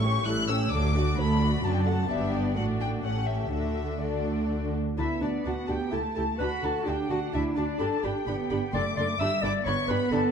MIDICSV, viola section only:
0, 0, Header, 1, 2, 480
1, 0, Start_track
1, 0, Key_signature, 2, "major"
1, 0, Tempo, 461184
1, 752, Time_signature, 3, 2, 24, 8
1, 2677, Tempo, 480000
1, 5557, Tempo, 466563
1, 10559, End_track
2, 0, Start_track
2, 0, Title_t, "Viola section"
2, 0, Program_c, 0, 48
2, 37, Note_on_c, 0, 61, 44
2, 40, Note_on_c, 0, 57, 46
2, 264, Note_on_c, 0, 64, 47
2, 266, Note_on_c, 0, 55, 43
2, 275, Note_off_c, 0, 61, 0
2, 276, Note_off_c, 0, 57, 0
2, 490, Note_off_c, 0, 64, 0
2, 491, Note_off_c, 0, 55, 0
2, 502, Note_on_c, 0, 61, 40
2, 506, Note_on_c, 0, 57, 41
2, 740, Note_on_c, 0, 62, 52
2, 742, Note_on_c, 0, 54, 57
2, 748, Note_off_c, 0, 61, 0
2, 749, Note_off_c, 0, 57, 0
2, 971, Note_off_c, 0, 62, 0
2, 972, Note_off_c, 0, 54, 0
2, 992, Note_on_c, 0, 66, 47
2, 993, Note_on_c, 0, 57, 50
2, 1227, Note_on_c, 0, 62, 53
2, 1229, Note_on_c, 0, 54, 47
2, 1234, Note_off_c, 0, 57, 0
2, 1234, Note_off_c, 0, 66, 0
2, 1467, Note_on_c, 0, 66, 47
2, 1469, Note_off_c, 0, 62, 0
2, 1470, Note_off_c, 0, 54, 0
2, 1474, Note_on_c, 0, 57, 48
2, 1708, Note_off_c, 0, 66, 0
2, 1711, Note_off_c, 0, 57, 0
2, 1713, Note_on_c, 0, 54, 41
2, 1718, Note_on_c, 0, 62, 48
2, 1935, Note_off_c, 0, 54, 0
2, 1937, Note_off_c, 0, 62, 0
2, 1946, Note_on_c, 0, 57, 41
2, 1946, Note_on_c, 0, 66, 41
2, 2190, Note_off_c, 0, 57, 0
2, 2190, Note_off_c, 0, 66, 0
2, 2195, Note_on_c, 0, 62, 57
2, 2198, Note_on_c, 0, 59, 57
2, 2645, Note_off_c, 0, 62, 0
2, 2647, Note_off_c, 0, 59, 0
2, 2666, Note_on_c, 0, 57, 47
2, 2670, Note_on_c, 0, 62, 46
2, 3134, Note_off_c, 0, 62, 0
2, 3135, Note_off_c, 0, 57, 0
2, 3147, Note_on_c, 0, 57, 39
2, 3149, Note_on_c, 0, 61, 39
2, 3611, Note_off_c, 0, 57, 0
2, 3620, Note_on_c, 0, 62, 39
2, 3623, Note_on_c, 0, 57, 43
2, 3631, Note_off_c, 0, 61, 0
2, 4104, Note_off_c, 0, 62, 0
2, 4105, Note_off_c, 0, 57, 0
2, 4125, Note_on_c, 0, 62, 39
2, 4127, Note_on_c, 0, 57, 41
2, 4866, Note_off_c, 0, 62, 0
2, 4867, Note_off_c, 0, 57, 0
2, 5076, Note_on_c, 0, 62, 41
2, 5076, Note_on_c, 0, 66, 44
2, 5156, Note_off_c, 0, 62, 0
2, 5156, Note_off_c, 0, 66, 0
2, 5306, Note_on_c, 0, 62, 36
2, 5306, Note_on_c, 0, 66, 42
2, 5386, Note_off_c, 0, 62, 0
2, 5386, Note_off_c, 0, 66, 0
2, 5556, Note_on_c, 0, 62, 41
2, 5558, Note_on_c, 0, 66, 41
2, 5638, Note_off_c, 0, 62, 0
2, 5640, Note_off_c, 0, 66, 0
2, 5793, Note_on_c, 0, 62, 36
2, 5793, Note_on_c, 0, 66, 36
2, 5875, Note_off_c, 0, 66, 0
2, 5876, Note_off_c, 0, 62, 0
2, 6034, Note_on_c, 0, 67, 36
2, 6036, Note_on_c, 0, 64, 38
2, 6116, Note_off_c, 0, 67, 0
2, 6118, Note_off_c, 0, 64, 0
2, 6288, Note_on_c, 0, 64, 35
2, 6291, Note_on_c, 0, 67, 33
2, 6370, Note_off_c, 0, 64, 0
2, 6373, Note_off_c, 0, 67, 0
2, 6535, Note_on_c, 0, 66, 49
2, 6537, Note_on_c, 0, 62, 43
2, 6617, Note_off_c, 0, 66, 0
2, 6619, Note_off_c, 0, 62, 0
2, 6764, Note_on_c, 0, 66, 42
2, 6768, Note_on_c, 0, 62, 42
2, 6846, Note_off_c, 0, 66, 0
2, 6850, Note_off_c, 0, 62, 0
2, 7008, Note_on_c, 0, 62, 43
2, 7013, Note_on_c, 0, 66, 44
2, 7091, Note_off_c, 0, 62, 0
2, 7095, Note_off_c, 0, 66, 0
2, 7254, Note_on_c, 0, 62, 38
2, 7254, Note_on_c, 0, 66, 41
2, 7336, Note_off_c, 0, 62, 0
2, 7336, Note_off_c, 0, 66, 0
2, 7486, Note_on_c, 0, 66, 40
2, 7491, Note_on_c, 0, 62, 41
2, 7569, Note_off_c, 0, 66, 0
2, 7573, Note_off_c, 0, 62, 0
2, 7731, Note_on_c, 0, 66, 36
2, 7734, Note_on_c, 0, 62, 40
2, 7814, Note_off_c, 0, 66, 0
2, 7817, Note_off_c, 0, 62, 0
2, 7973, Note_on_c, 0, 67, 49
2, 7977, Note_on_c, 0, 62, 47
2, 8055, Note_off_c, 0, 67, 0
2, 8059, Note_off_c, 0, 62, 0
2, 8216, Note_on_c, 0, 67, 45
2, 8219, Note_on_c, 0, 62, 41
2, 8298, Note_off_c, 0, 67, 0
2, 8302, Note_off_c, 0, 62, 0
2, 8453, Note_on_c, 0, 62, 44
2, 8453, Note_on_c, 0, 67, 43
2, 8535, Note_off_c, 0, 67, 0
2, 8536, Note_off_c, 0, 62, 0
2, 8695, Note_on_c, 0, 62, 44
2, 8695, Note_on_c, 0, 67, 46
2, 8777, Note_off_c, 0, 62, 0
2, 8777, Note_off_c, 0, 67, 0
2, 8944, Note_on_c, 0, 62, 45
2, 8947, Note_on_c, 0, 69, 47
2, 9027, Note_off_c, 0, 62, 0
2, 9029, Note_off_c, 0, 69, 0
2, 9193, Note_on_c, 0, 69, 39
2, 9196, Note_on_c, 0, 62, 42
2, 9275, Note_off_c, 0, 69, 0
2, 9279, Note_off_c, 0, 62, 0
2, 9420, Note_on_c, 0, 62, 52
2, 9420, Note_on_c, 0, 67, 57
2, 9502, Note_off_c, 0, 62, 0
2, 9502, Note_off_c, 0, 67, 0
2, 9654, Note_on_c, 0, 62, 53
2, 9655, Note_on_c, 0, 67, 52
2, 9736, Note_off_c, 0, 62, 0
2, 9737, Note_off_c, 0, 67, 0
2, 9892, Note_on_c, 0, 67, 54
2, 9897, Note_on_c, 0, 62, 56
2, 9974, Note_off_c, 0, 67, 0
2, 9980, Note_off_c, 0, 62, 0
2, 10125, Note_on_c, 0, 67, 53
2, 10127, Note_on_c, 0, 62, 49
2, 10207, Note_off_c, 0, 67, 0
2, 10209, Note_off_c, 0, 62, 0
2, 10360, Note_on_c, 0, 62, 52
2, 10361, Note_on_c, 0, 67, 53
2, 10442, Note_off_c, 0, 62, 0
2, 10443, Note_off_c, 0, 67, 0
2, 10559, End_track
0, 0, End_of_file